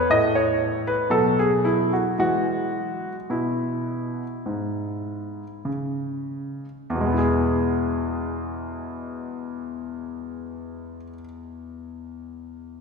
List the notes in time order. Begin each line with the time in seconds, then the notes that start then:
Already playing: B4
0.10 A2 A3 D#5
0.35 C#5
0.87 B4
1.10 B2 F#3 A4
1.39 G#4
1.65 E4
1.93 F#4
2.18 E3 G#3 F#4
3.30 B2 E4
4.46 G#2
5.65 C#3
6.90 E2
6.95 B2
7.01 G#3
7.06 B3
7.12 E4
7.18 G#4